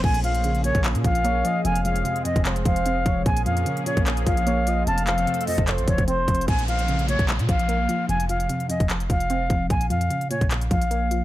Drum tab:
CC |x-----------------------------------------------|------------------------------------------------|------------------------------------------------|------------------------------------------------|
HH |---x--x--x--x--x--x--x--x--x--x--x--x-----x-----|x--x--x--x--x--x--x--x--x--x--x--x--x-----x-----|x--x--x--x--x--x--x--x--x--x--x--x--x-----x-----|x--x--x--x--x-x-x-o--x--x--x--x--x--x-----x-x-x-|
CP |------------------------x-----------------------|------------------------x-----------------------|------------------------x-----------------------|------x-----------------x-----------------------|
BD |o--------------------o--------o-----------------|---------------------o--------o-----------o-----|o--------------------o--------o-----------------|---------------------o--------o--o--------o-----|

CC |------------------------------------------------|------------------------------------------------|------------------------------------------------|
HH |x--x--x--x--x--x--x--x--x--x--x--x--x-----x-----|x--x--x--x--x--x--x--x--x--x--x--x--x-----x-----|x--x--x--x--x--x--x--x--x--x--x--x--x-----x-----|
CP |------------------------x-----------------------|------------------------x-----------------------|------------------------x-----------------------|
BD |o--------------------o--------o-----------------|---------------------o--------o-----------o-----|o--------------------o--------o-----------------|